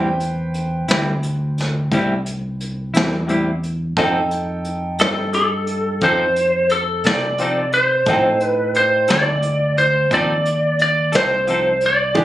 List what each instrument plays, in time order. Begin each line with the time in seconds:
Already playing: fingered electric bass E2, upright piano B4 C5 G5
0.20 closed hi-hat
0.54 closed hi-hat
0.88 fingered electric bass D2, clean electric guitar G3 C4 E4, snare, closed hi-hat
1.23 closed hi-hat
1.58 snare, closed hi-hat
1.91 fingered electric bass C2, clean electric guitar A2 G3 C4 E4, kick, closed hi-hat
2.26 closed hi-hat
2.60 closed hi-hat
2.94 fingered electric bass E2, clean electric guitar G3 C4 E4, snare, closed hi-hat
3.27 clean electric guitar A2 G3 C4 E4, closed hi-hat
3.63 closed hi-hat
3.97 fingered electric bass F2, clean electric guitar F3 C4 D#4 A4, upright piano D#4 A4 G5, kick, closed hi-hat
4.31 closed hi-hat
4.65 closed hi-hat
4.99 fingered electric bass G2, clean electric guitar D#4 A4, lead electric guitar A4, snare, closed hi-hat
5.03 clean electric guitar C4
5.33 lead electric guitar A4, closed hi-hat
5.67 closed hi-hat
6.01 fingered electric bass F2, clean electric guitar F3 C4 D#4 A4, lead electric guitar C5, kick, closed hi-hat
6.36 closed hi-hat
6.69 lead electric guitar A4, closed hi-hat
7.04 fingered electric bass C3, clean electric guitar D#4 A4, lead electric guitar D5, snare, closed hi-hat
7.08 clean electric guitar C4
7.38 clean electric guitar F3 C4 D#4 A4, closed hi-hat
7.73 lead electric guitar C5, closed hi-hat
8.06 fingered electric bass A2, clean electric guitar F3 C4 D#4, upright piano D#4 A4 G5, kick, closed hi-hat
8.10 clean electric guitar A4
8.40 lead electric guitar B4, closed hi-hat
8.75 lead electric guitar C5, closed hi-hat
9.08 fingered electric bass D2, clean electric guitar D#4 A4, snare, closed hi-hat
9.12 clean electric guitar C4, lead electric guitar D5
9.42 closed hi-hat
9.78 lead electric guitar C5, closed hi-hat
10.11 fingered electric bass D#2, clean electric guitar F3 C4 D#4 A4, lead electric guitar D5, kick, closed hi-hat
10.45 closed hi-hat
10.79 lead electric guitar D5, closed hi-hat
11.12 fingered electric bass C2, clean electric guitar C4 D#4 A4, lead electric guitar C5, snare, closed hi-hat
11.47 clean electric guitar F3 C4 D#4 A4, closed hi-hat
11.81 closed hi-hat
11.86 lead electric guitar D5
12.15 fingered electric bass G#1, clean electric guitar E3 G#3 D4 G4, upright piano G#4 D5, kick, closed hi-hat
12.19 upright piano G#5